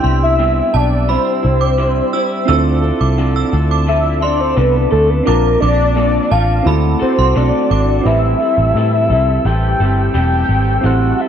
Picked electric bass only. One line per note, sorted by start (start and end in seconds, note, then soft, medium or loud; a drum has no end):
0.04 0.60 C2 medium
0.75 1.16 B1 loud
1.45 2.00 C2 medium
2.49 2.91 D2 loud
3.01 3.43 C2 medium
3.53 4.54 D2 loud
4.58 4.85 C2 medium
4.92 5.20 D2 loud
5.28 5.55 A#1 loud
5.62 6.18 A#1 medium
6.32 6.60 A1 medium
6.66 6.94 D2 loud
7.02 muted picked electric bass stroke medium
7.19 7.33 C2 medium
7.36 7.50 B1 medium
7.71 7.99 G#1 medium
8.06 8.33 A1 loud
8.58 8.72 A1 medium
8.75 9.11 A2 medium
9.10 9.38 C2 medium
9.45 9.73 A1 loud
9.80 10.08 G1 medium
10.15 10.42 E1 loud
10.49 10.77 G#1 medium
10.84 11.12 A1 loud